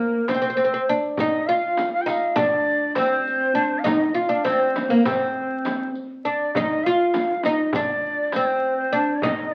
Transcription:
Already playing: A#3 A#4
0.28 C4 C5, riq, darbuka tek, frame drum
0.35 C4
0.42 C4
0.50 C4
0.57 C4, riq
0.65 C4
0.74 C4
0.89 D4, riq
1.17 D#4 D#5, riq, frame drum, darbuka dum
1.47 F4 F5, darbuka ka
1.77 riq, darbuka tek, frame drum
1.93 F5
2.01 G5
2.06 D#4 F5, riq, darbuka tek
2.36 D4 D5, riq, darbuka dum, frame drum
2.95 C4 C5, riq, darbuka tek, frame drum
3.27 riq, darbuka ka
3.55 D4, riq
3.79 F5
3.84 D#4 D#5, riq, darbuka dum, frame drum
4.15 F4 F5, riq, darbuka ka
4.29 D4
4.45 C4 C5, riq, darbuka tek, frame drum
4.52 D5
4.60 C5
4.76 riq, darbuka tek, frame drum
4.90 A#3 A#4
5.03 C4 C5, riq, frame drum, darbuka dum
5.65 riq, darbuka tek, frame drum
5.95 riq
6.24 D4 D5, riq, darbuka ka
6.54 D#4 D#5, riq, darbuka dum, frame drum
6.84 F4 F5, darbuka ka
7.14 riq, darbuka tek, frame drum
7.43 D#4 D#5, riq, darbuka tek, frame drum
7.73 D4 D5, riq, darbuka dum, frame drum
8.32 C4 C5, riq, darbuka tek, frame drum
8.39 D5
8.46 C5
8.62 darbuka ka
8.77 C5
8.93 D4, riq
9.22 D#4 D#5, riq, darbuka dum, frame drum

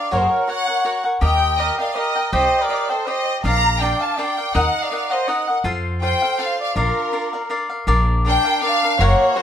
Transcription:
Already playing: D4 A#4 D5 F5
0.11 F#1 F#4 A#4 C#5 F#5
0.18 G#4 C5
0.28 A#4 C#5
0.48 F#4 A#4 C#5 F#5
0.68 A#4 C#5 F#5
0.85 F#4 A#4 C#5 F#5
1.04 A#4 C#5 F#5
1.21 D#2 G4 A#4 D#5 G5
1.58 G4 A#4 D#5 G5
1.78 A#4 D5 D#5 F5 G5
1.95 G4 A#4 D#5 G5
2.16 A#4 D#5 G5
2.32 C2 G4 C5 D#5 G5
2.62 A#4 D5
2.69 G4 C5 D#5 G5
2.89 A4 C5 D#5 G5
3.07 G4 C5 D#5 G5
3.44 A#1 D4 A#4 D5 F5 A#5
3.80 D4 A#4 D5 F5 G5
4.00 F5 A5
4.17 D4 A#4 D5 F5 G5
4.38 A#4 D5 F5
4.54 D#2 D#4 A#4 D#5 F#5
4.83 D5 F5
4.90 D#4 A#4 D#5 F#5
5.10 A#4 C5 D#5 F#5
5.28 D#4 A#4 D#5 F#5
5.47 A#4 D#5 F#5
5.64 F2 F4 A4 C5 F5
6.02 F4 A4 C5 F5 G5
6.22 A4 C5 F5
6.38 F4 A4 C5 F5
6.60 D5 F5
6.75 A#1 D4 F4 A#4 D5 F5
7.12 D4 A#4 D5 F5
7.33 A#4 D5 F5
7.49 D4 A#4 D5 F5
7.69 A#4 D5 F5
7.87 A#1 D4 A#4 D5 F5
8.25 D4 A#4 D5 F5 G5
8.45 A#4 D5 F5
8.62 D4 A#4 D5 F5
8.83 A#4 D5 F5
8.99 F#1 A#3 F#4 A#4 C#5 F#5
9.36 F#3 F#4 A#4 C5 F#5

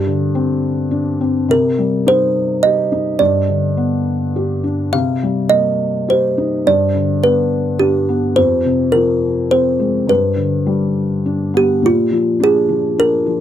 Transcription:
Already playing: G2 G4
0.07 D3
0.35 C4
0.91 D4
1.21 C4
1.48 C3 A#4
1.78 G3
2.06 D#4 C5
2.63 G4 D#5
2.92 D#4
3.19 G2 D5
3.49 D3
3.77 B3
4.36 G4
4.64 D4
4.93 C3 F5
5.23 G3
5.50 A#3 D#5
6.08 G4 C5
6.38 D#4
6.67 G2 D5
6.95 D3
7.23 B3 B4
7.79 D4 G4
8.09 B3
8.36 F2 C5
8.65 C3
8.92 F3 A#4
9.51 C4 C5
9.80 G#3
10.07 G2 B4
10.36 D3
10.66 G3
11.26 D4
11.54 B3 G4
11.82 A#2 F4
12.11 F3
12.40 D4 G#4
12.69 F3
12.98 D4 A#4
13.26 F3

